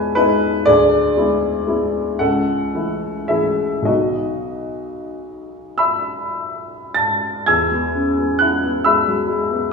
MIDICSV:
0, 0, Header, 1, 2, 480
1, 0, Start_track
1, 0, Key_signature, 4, "major"
1, 0, Tempo, 998336
1, 318, Time_signature, 6, 3, 24, 8
1, 805, Tempo, 1060071
1, 1285, Tempo, 1136364
1, 1765, Tempo, 1255230
1, 2725, Tempo, 1090909
1, 3205, Tempo, 903614
1, 4403, End_track
2, 0, Start_track
2, 0, Title_t, "Upright piano"
2, 0, Program_c, 0, 0
2, 0, Control_c, 0, 64, 127
2, 0, Note_on_c, 0, 56, 48
2, 0, Note_on_c, 0, 59, 50
2, 0, Note_on_c, 0, 64, 50
2, 0, Note_on_c, 0, 71, 83
2, 0, Note_on_c, 0, 73, 80
2, 0, Note_on_c, 0, 75, 63
2, 0, Note_on_c, 0, 80, 98
2, 0, Note_on_c, 0, 81, 100
2, 0, Note_on_c, 0, 83, 84
2, 63, Note_off_c, 0, 56, 0
2, 63, Note_off_c, 0, 71, 0
2, 66, Note_off_c, 0, 59, 0
2, 66, Note_off_c, 0, 64, 0
2, 73, Note_on_c, 0, 71, 98
2, 78, Note_off_c, 0, 80, 0
2, 81, Note_on_c, 0, 56, 46
2, 81, Note_on_c, 0, 63, 68
2, 84, Note_on_c, 0, 59, 48
2, 87, Note_on_c, 0, 64, 49
2, 298, Note_off_c, 0, 56, 0
2, 299, Note_off_c, 0, 59, 0
2, 300, Note_off_c, 0, 63, 0
2, 301, Note_off_c, 0, 64, 0
2, 313, Note_off_c, 0, 71, 0
2, 315, Note_on_c, 0, 74, 100
2, 320, Note_on_c, 0, 68, 70
2, 321, Note_on_c, 0, 38, 64
2, 327, Note_off_c, 0, 83, 0
2, 327, Control_c, 0, 64, 0
2, 329, Note_off_c, 0, 75, 0
2, 330, Note_off_c, 0, 73, 0
2, 330, Note_off_c, 0, 81, 0
2, 402, Control_c, 0, 64, 127
2, 553, Note_off_c, 0, 38, 0
2, 562, Note_on_c, 0, 56, 45
2, 563, Note_on_c, 0, 59, 42
2, 566, Note_on_c, 0, 64, 51
2, 787, Note_off_c, 0, 56, 0
2, 788, Note_off_c, 0, 59, 0
2, 789, Note_off_c, 0, 64, 0
2, 804, Note_on_c, 0, 56, 49
2, 808, Note_on_c, 0, 59, 47
2, 809, Note_on_c, 0, 64, 47
2, 1023, Note_off_c, 0, 56, 0
2, 1024, Note_off_c, 0, 59, 0
2, 1024, Note_off_c, 0, 68, 0
2, 1025, Note_off_c, 0, 64, 0
2, 1039, Note_on_c, 0, 78, 86
2, 1040, Note_off_c, 0, 74, 0
2, 1043, Note_on_c, 0, 69, 77
2, 1044, Note_on_c, 0, 37, 54
2, 1051, Control_c, 0, 64, 0
2, 1128, Control_c, 0, 64, 127
2, 1279, Note_off_c, 0, 37, 0
2, 1289, Note_on_c, 0, 52, 37
2, 1291, Note_on_c, 0, 57, 42
2, 1291, Note_on_c, 0, 64, 42
2, 1504, Note_off_c, 0, 69, 0
2, 1505, Note_off_c, 0, 52, 0
2, 1506, Note_off_c, 0, 57, 0
2, 1506, Note_off_c, 0, 64, 0
2, 1516, Note_on_c, 0, 76, 76
2, 1519, Note_off_c, 0, 78, 0
2, 1520, Note_on_c, 0, 68, 54
2, 1523, Note_on_c, 0, 52, 41
2, 1524, Note_on_c, 0, 57, 41
2, 1525, Note_on_c, 0, 64, 49
2, 1744, Note_on_c, 0, 35, 49
2, 1748, Note_off_c, 0, 68, 0
2, 1749, Note_on_c, 0, 54, 40
2, 1750, Note_off_c, 0, 52, 0
2, 1750, Note_off_c, 0, 57, 0
2, 1751, Note_off_c, 0, 64, 0
2, 1755, Note_on_c, 0, 59, 35
2, 1758, Note_on_c, 0, 75, 67
2, 1760, Note_on_c, 0, 63, 36
2, 1763, Note_off_c, 0, 76, 0
2, 1764, Note_on_c, 0, 66, 54
2, 1775, Control_c, 0, 64, 0
2, 1855, Control_c, 0, 64, 127
2, 2483, Note_off_c, 0, 66, 0
2, 2493, Note_on_c, 0, 88, 77
2, 2495, Note_off_c, 0, 75, 0
2, 2498, Note_on_c, 0, 83, 58
2, 2499, Note_on_c, 0, 76, 51
2, 2961, Note_off_c, 0, 83, 0
2, 2962, Note_off_c, 0, 76, 0
2, 2973, Note_on_c, 0, 93, 84
2, 2976, Note_off_c, 0, 88, 0
2, 2977, Note_on_c, 0, 81, 66
2, 3177, Note_off_c, 0, 35, 0
2, 3180, Note_off_c, 0, 54, 0
2, 3183, Note_off_c, 0, 59, 0
2, 3186, Note_off_c, 0, 63, 0
2, 3189, Note_off_c, 0, 81, 0
2, 3202, Note_on_c, 0, 92, 84
2, 3203, Note_off_c, 0, 93, 0
2, 3206, Note_on_c, 0, 80, 62
2, 3207, Note_on_c, 0, 88, 66
2, 3209, Note_on_c, 0, 40, 58
2, 3214, Control_c, 0, 64, 0
2, 3302, Control_c, 0, 64, 127
2, 3334, Note_on_c, 0, 59, 44
2, 3459, Note_on_c, 0, 61, 35
2, 3529, Note_off_c, 0, 59, 0
2, 3578, Note_off_c, 0, 61, 0
2, 3580, Note_on_c, 0, 59, 39
2, 3676, Note_off_c, 0, 80, 0
2, 3676, Note_off_c, 0, 88, 0
2, 3691, Note_on_c, 0, 90, 82
2, 3695, Note_off_c, 0, 92, 0
2, 3699, Note_on_c, 0, 78, 62
2, 3702, Note_on_c, 0, 64, 49
2, 3772, Note_off_c, 0, 59, 0
2, 3822, Note_on_c, 0, 59, 46
2, 3892, Note_off_c, 0, 64, 0
2, 3921, Note_off_c, 0, 78, 0
2, 3934, Note_off_c, 0, 90, 0
2, 3934, Note_on_c, 0, 88, 79
2, 3939, Note_on_c, 0, 83, 64
2, 3942, Note_on_c, 0, 56, 43
2, 3942, Note_on_c, 0, 76, 56
2, 4010, Note_off_c, 0, 59, 0
2, 4056, Note_on_c, 0, 54, 40
2, 4128, Note_off_c, 0, 56, 0
2, 4171, Note_on_c, 0, 56, 41
2, 4173, Note_off_c, 0, 54, 0
2, 4288, Note_on_c, 0, 59, 44
2, 4359, Note_off_c, 0, 56, 0
2, 4386, Note_off_c, 0, 83, 0
2, 4388, Note_off_c, 0, 76, 0
2, 4403, Note_off_c, 0, 40, 0
2, 4403, Note_off_c, 0, 59, 0
2, 4403, Note_off_c, 0, 88, 0
2, 4403, End_track
0, 0, End_of_file